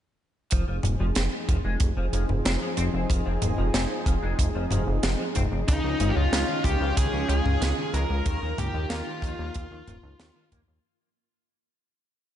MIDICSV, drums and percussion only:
0, 0, Header, 1, 2, 480
1, 0, Start_track
1, 0, Key_signature, -4, "minor"
1, 0, Tempo, 645161
1, 385, Time_signature, 4, 2, 24, 8
1, 9188, End_track
2, 0, Start_track
2, 0, Title_t, "Drums"
2, 378, Note_on_c, 9, 42, 102
2, 388, Note_on_c, 9, 36, 112
2, 452, Note_off_c, 9, 42, 0
2, 463, Note_off_c, 9, 36, 0
2, 619, Note_on_c, 9, 45, 79
2, 631, Note_on_c, 9, 42, 78
2, 694, Note_off_c, 9, 45, 0
2, 705, Note_off_c, 9, 42, 0
2, 858, Note_on_c, 9, 42, 97
2, 865, Note_on_c, 9, 38, 113
2, 932, Note_off_c, 9, 42, 0
2, 940, Note_off_c, 9, 38, 0
2, 1106, Note_on_c, 9, 36, 98
2, 1107, Note_on_c, 9, 42, 72
2, 1181, Note_off_c, 9, 36, 0
2, 1181, Note_off_c, 9, 42, 0
2, 1338, Note_on_c, 9, 42, 99
2, 1342, Note_on_c, 9, 36, 110
2, 1412, Note_off_c, 9, 42, 0
2, 1417, Note_off_c, 9, 36, 0
2, 1586, Note_on_c, 9, 42, 72
2, 1660, Note_off_c, 9, 42, 0
2, 1705, Note_on_c, 9, 45, 54
2, 1780, Note_off_c, 9, 45, 0
2, 1826, Note_on_c, 9, 42, 88
2, 1830, Note_on_c, 9, 38, 115
2, 1900, Note_off_c, 9, 42, 0
2, 1904, Note_off_c, 9, 38, 0
2, 2061, Note_on_c, 9, 42, 80
2, 2136, Note_off_c, 9, 42, 0
2, 2304, Note_on_c, 9, 36, 110
2, 2311, Note_on_c, 9, 42, 98
2, 2378, Note_off_c, 9, 36, 0
2, 2385, Note_off_c, 9, 42, 0
2, 2543, Note_on_c, 9, 42, 76
2, 2544, Note_on_c, 9, 45, 90
2, 2618, Note_off_c, 9, 42, 0
2, 2618, Note_off_c, 9, 45, 0
2, 2783, Note_on_c, 9, 38, 109
2, 2788, Note_on_c, 9, 42, 92
2, 2857, Note_off_c, 9, 38, 0
2, 2862, Note_off_c, 9, 42, 0
2, 3022, Note_on_c, 9, 36, 100
2, 3027, Note_on_c, 9, 42, 74
2, 3096, Note_off_c, 9, 36, 0
2, 3101, Note_off_c, 9, 42, 0
2, 3265, Note_on_c, 9, 36, 104
2, 3268, Note_on_c, 9, 42, 103
2, 3339, Note_off_c, 9, 36, 0
2, 3342, Note_off_c, 9, 42, 0
2, 3501, Note_on_c, 9, 45, 78
2, 3509, Note_on_c, 9, 42, 76
2, 3575, Note_off_c, 9, 45, 0
2, 3583, Note_off_c, 9, 42, 0
2, 3743, Note_on_c, 9, 42, 89
2, 3745, Note_on_c, 9, 38, 122
2, 3817, Note_off_c, 9, 42, 0
2, 3820, Note_off_c, 9, 38, 0
2, 3981, Note_on_c, 9, 42, 76
2, 3986, Note_on_c, 9, 45, 79
2, 3989, Note_on_c, 9, 36, 66
2, 4055, Note_off_c, 9, 42, 0
2, 4061, Note_off_c, 9, 45, 0
2, 4064, Note_off_c, 9, 36, 0
2, 4227, Note_on_c, 9, 42, 98
2, 4229, Note_on_c, 9, 36, 122
2, 4301, Note_off_c, 9, 42, 0
2, 4304, Note_off_c, 9, 36, 0
2, 4464, Note_on_c, 9, 42, 81
2, 4468, Note_on_c, 9, 45, 87
2, 4538, Note_off_c, 9, 42, 0
2, 4543, Note_off_c, 9, 45, 0
2, 4708, Note_on_c, 9, 38, 111
2, 4711, Note_on_c, 9, 42, 103
2, 4783, Note_off_c, 9, 38, 0
2, 4785, Note_off_c, 9, 42, 0
2, 4942, Note_on_c, 9, 36, 102
2, 4949, Note_on_c, 9, 42, 72
2, 5016, Note_off_c, 9, 36, 0
2, 5023, Note_off_c, 9, 42, 0
2, 5187, Note_on_c, 9, 42, 97
2, 5188, Note_on_c, 9, 36, 116
2, 5261, Note_off_c, 9, 42, 0
2, 5262, Note_off_c, 9, 36, 0
2, 5427, Note_on_c, 9, 42, 70
2, 5501, Note_off_c, 9, 42, 0
2, 5547, Note_on_c, 9, 45, 58
2, 5622, Note_off_c, 9, 45, 0
2, 5668, Note_on_c, 9, 42, 103
2, 5673, Note_on_c, 9, 38, 111
2, 5742, Note_off_c, 9, 42, 0
2, 5748, Note_off_c, 9, 38, 0
2, 5908, Note_on_c, 9, 42, 79
2, 5982, Note_off_c, 9, 42, 0
2, 6143, Note_on_c, 9, 42, 95
2, 6146, Note_on_c, 9, 36, 113
2, 6218, Note_off_c, 9, 42, 0
2, 6220, Note_off_c, 9, 36, 0
2, 6386, Note_on_c, 9, 45, 99
2, 6392, Note_on_c, 9, 42, 75
2, 6460, Note_off_c, 9, 45, 0
2, 6466, Note_off_c, 9, 42, 0
2, 6622, Note_on_c, 9, 38, 120
2, 6623, Note_on_c, 9, 42, 89
2, 6696, Note_off_c, 9, 38, 0
2, 6697, Note_off_c, 9, 42, 0
2, 6862, Note_on_c, 9, 36, 101
2, 6872, Note_on_c, 9, 42, 75
2, 6936, Note_off_c, 9, 36, 0
2, 6946, Note_off_c, 9, 42, 0
2, 7101, Note_on_c, 9, 42, 87
2, 7110, Note_on_c, 9, 36, 124
2, 7175, Note_off_c, 9, 42, 0
2, 7184, Note_off_c, 9, 36, 0
2, 7347, Note_on_c, 9, 45, 95
2, 7348, Note_on_c, 9, 42, 72
2, 7422, Note_off_c, 9, 45, 0
2, 7423, Note_off_c, 9, 42, 0
2, 7586, Note_on_c, 9, 38, 111
2, 7589, Note_on_c, 9, 42, 92
2, 7660, Note_off_c, 9, 38, 0
2, 7663, Note_off_c, 9, 42, 0
2, 7826, Note_on_c, 9, 36, 62
2, 7827, Note_on_c, 9, 42, 78
2, 7829, Note_on_c, 9, 45, 84
2, 7901, Note_off_c, 9, 36, 0
2, 7901, Note_off_c, 9, 42, 0
2, 7903, Note_off_c, 9, 45, 0
2, 9188, End_track
0, 0, End_of_file